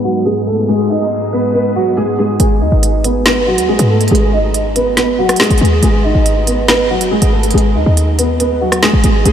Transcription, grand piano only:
0.04 0.23 F#3 medium
0.04 0.22 F#4 medium
0.25 0.44 G#3 medium
0.25 0.43 G#4 medium
0.47 0.65 A3 medium
0.47 0.65 A4 medium
0.68 0.87 G#3 medium
0.68 0.86 G#4 loud
0.90 1.31 D#4 medium
0.90 1.30 D#5 medium
1.33 1.51 B3 medium
1.33 1.51 B4 medium
1.54 1.73 B3 medium
1.54 1.72 B4 medium
1.76 1.94 F#3 medium
1.76 1.94 F#4 medium
1.97 2.15 G#3 medium
1.97 2.15 G#4 medium
2.19 2.37 G#3 medium
2.19 2.36 G#4 medium
2.40 2.58 G#3 medium
2.40 2.58 G#4 loud
2.61 3.02 D#4 medium
2.61 3.02 D#5 medium
3.04 3.23 B3 medium
3.04 3.22 B4 medium
3.26 3.44 B3 medium
3.26 3.44 B4 medium
3.47 3.65 F#3 medium
3.47 3.65 F#4 medium
3.69 3.87 G#3 medium
3.69 3.86 G#4 medium
3.90 4.08 A3 medium
3.90 4.08 A4 medium
4.11 4.30 G#3 medium
4.11 4.29 G#4 loud
4.33 4.73 D#4 medium
4.33 4.73 D#5 medium
4.76 4.94 B3 medium
4.76 4.93 B4 medium
4.97 5.15 B3 medium
4.97 5.15 B4 medium
5.18 5.37 F#3 medium
5.18 5.36 F#4 medium
5.40 5.58 G#3 medium
5.40 5.58 G#4 medium
5.61 5.80 G#3 medium
5.61 5.79 G#4 medium
5.83 6.01 G#3 medium
5.83 6.01 G#4 loud
6.04 6.45 D#4 medium
6.04 6.44 D#5 medium
6.47 6.65 B3 medium
6.47 6.65 B4 medium
6.68 6.87 B3 medium
6.68 6.86 B4 medium
6.90 7.08 F#3 medium
6.90 7.08 F#4 medium
7.11 7.30 G#3 medium
7.11 7.29 G#4 medium
7.33 7.51 A3 medium
7.33 7.51 A4 medium
7.54 7.73 G#3 medium
7.54 7.72 G#4 loud
7.75 8.16 D#4 medium
7.75 8.16 D#5 medium
8.18 8.37 B3 medium
8.18 8.36 B4 medium
8.40 8.58 B3 medium
8.40 8.58 B4 medium
8.61 8.80 F#3 medium
8.61 8.79 F#4 medium
8.83 9.01 G#3 medium
8.83 9.01 G#4 medium
9.04 9.23 G#3 medium
9.04 9.22 G#4 medium
9.25 9.32 G#3 medium
9.25 9.32 G#4 loud

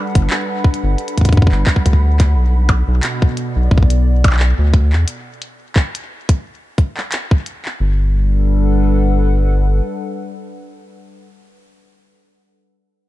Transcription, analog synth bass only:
0.15 0.28 G1 loud
0.83 0.96 G1 medium
1.33 1.48 G2 medium
1.52 1.64 G1 medium
1.86 2.36 D2 medium
2.35 2.83 B1 medium
2.88 3.01 B1 loud
3.56 3.69 B1 medium
3.71 4.53 B1 loud
4.59 4.94 D2 loud
4.93 5.05 E2 medium
7.80 9.81 G1 medium

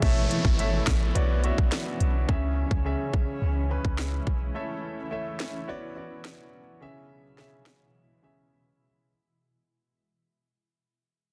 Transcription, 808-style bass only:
0.02 0.26 A1 loud
0.45 0.81 G#1 medium
0.87 1.11 A1 medium
1.16 1.51 B1 loud
1.58 1.70 B1 medium
2.00 2.24 B1 medium
2.29 2.65 C#2 loud
2.71 2.95 C#2 medium
3.14 3.26 B1 medium
3.42 3.78 C#2 loud
3.85 4.20 C#2 medium
4.27 4.51 B1 medium

